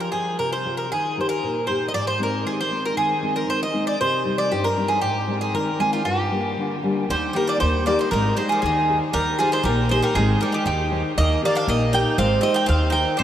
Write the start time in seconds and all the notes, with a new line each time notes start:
Already playing: F3
0.00 A#4
0.12 F4 G#4 C5
0.39 C3 A#4
0.52 C5
0.65 F4 G#4 C5
0.77 A#4
0.92 D#3 G#4
1.17 D#4 G4 A#4 C5
1.29 A#4
1.43 A#2
1.67 D#4 G4 A#4 C5
1.88 D#5
1.94 G#2 D5
2.07 C5
2.19 G#3 C4 D#4 A#4
2.45 D#3 G#4
2.61 C5
2.70 G#3 C4 D#4
2.85 A#4
2.97 D#3 G#4
3.22 G#3 C4 D#4
3.36 A#4
3.48 D#3 C5
3.63 D#5
3.73 G#3 C4 D#4
3.87 D5
4.01 C3 C5
4.24 G3 C4 D#4
4.38 D5
4.51 G2 G4
4.64 A#4
4.77 G3 C4 D#4
4.88 G#4
5.02 G#2 G4
5.28 G#3 C4 D#4
5.41 G#4
5.54 D#3 A#4
5.79 G#3 C4 D#4 G#4
5.93 F4
6.04 G2 G4
6.31 G3 A#3 D4
6.57 D3
6.83 G3 A#3 D4
7.09 D#2 D#3 G3 C5
7.33 G3 A#3 D#4 G4 A#4
7.47 A#3 D5
7.60 D#2 G3 A#3 C5
7.86 A#3 D#4 G4 D5
7.99 G#3 C5
8.11 G#1 D#3 G#3 A#4
8.37 G#3 D#4 G#4 C5
8.49 F3 G#4
8.62 D#2 D#3 G#4
8.89 D#4 G#4 C5
9.13 D#2 D#3 G3 A#4
9.39 F3 D#4 G4 G#4 A#4
9.52 G#3 C5
9.63 A#1 G3 A#3 A#4
9.89 G#3 D#4 G4 A#4 C5
10.02 G3 A#4
10.15 G#1 D#3 G#3 G#4
10.41 G3 D#4 G#4 A#4 C5
10.52 D#3 G4
10.66 D#2 D#3 G4
10.91 D#4 G#4 C5
11.18 D#2 D#3 A#3 D#5
11.43 A#3 D#4 G4 A#4 D5
11.55 D4 F5
11.67 A#1 A#3 D#5
11.93 D#4 G4 A#4 G5
12.18 G#1 G#3 C4 F5
12.41 C4 D#4 G#4 C5 D#5
12.54 D#4 G5
12.66 D#2 D#3 C4 F5
12.90 D#4 G#4 C5 G5
13.17 C2 G3 C4 C5